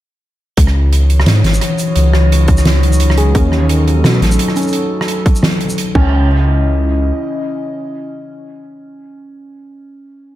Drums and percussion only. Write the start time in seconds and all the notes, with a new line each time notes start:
0.57 kick, closed hi-hat
0.67 cross-stick
0.93 closed hi-hat
1.10 closed hi-hat
1.20 cross-stick
1.26 snare, closed hi-hat
1.44 snare, closed hi-hat
1.54 shaker
1.61 cross-stick, closed hi-hat
1.79 closed hi-hat, shaker
1.96 closed hi-hat
2.13 cross-stick
2.32 closed hi-hat
2.48 kick, closed hi-hat
2.57 cross-stick, shaker
2.65 snare, closed hi-hat
2.83 closed hi-hat
2.93 shaker
3.00 closed hi-hat
3.10 cross-stick
3.18 closed hi-hat
3.35 kick, closed hi-hat
3.52 cross-stick
3.69 closed hi-hat
3.88 closed hi-hat
4.04 cross-stick, snare, closed hi-hat
4.22 snare, closed hi-hat
4.31 shaker
4.39 closed hi-hat
4.48 cross-stick
4.56 closed hi-hat, shaker
4.62 shaker
4.67 shaker
4.73 closed hi-hat
5.01 cross-stick
5.08 closed hi-hat
5.26 kick, closed hi-hat
5.35 shaker
5.43 cross-stick, snare, closed hi-hat
5.61 closed hi-hat
5.70 shaker
5.78 closed hi-hat
5.95 kick, crash